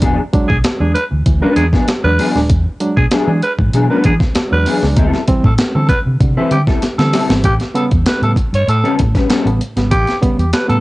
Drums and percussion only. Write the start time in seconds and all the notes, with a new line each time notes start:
0.02 kick, closed hi-hat
0.33 kick, closed hi-hat
0.50 kick
0.64 snare, closed hi-hat
0.95 closed hi-hat
1.26 kick, closed hi-hat
1.56 closed hi-hat
1.73 kick, snare
1.88 snare, closed hi-hat
2.19 open hi-hat
2.36 snare
2.50 kick, closed hi-hat
2.80 closed hi-hat
2.97 kick
3.11 snare, closed hi-hat
3.42 closed hi-hat
3.59 kick
3.73 closed hi-hat
4.04 kick, closed hi-hat
4.20 kick, snare
4.35 snare, closed hi-hat
4.66 open hi-hat
4.83 snare
4.97 kick, closed hi-hat
5.13 snare
5.28 kick, closed hi-hat
5.44 kick
5.58 snare, closed hi-hat
5.89 kick, closed hi-hat
6.20 kick, closed hi-hat
6.51 closed hi-hat
6.67 kick, snare
6.82 snare, closed hi-hat
6.99 snare
7.13 snare, open hi-hat
7.30 snare
7.44 kick, closed hi-hat
7.60 snare, closed hi-hat
7.75 closed hi-hat
7.91 kick, closed hi-hat
8.06 snare, closed hi-hat
8.23 closed hi-hat
8.36 kick, closed hi-hat
8.54 closed hi-hat
8.68 closed hi-hat
8.85 closed hi-hat
8.99 kick, closed hi-hat
9.15 kick, snare, closed hi-hat
9.30 snare, closed hi-hat
9.47 closed hi-hat
9.61 closed hi-hat
9.77 snare, closed hi-hat
9.91 kick, closed hi-hat
10.07 snare, closed hi-hat
10.23 kick, closed hi-hat
10.39 closed hi-hat
10.53 snare, closed hi-hat
10.70 closed hi-hat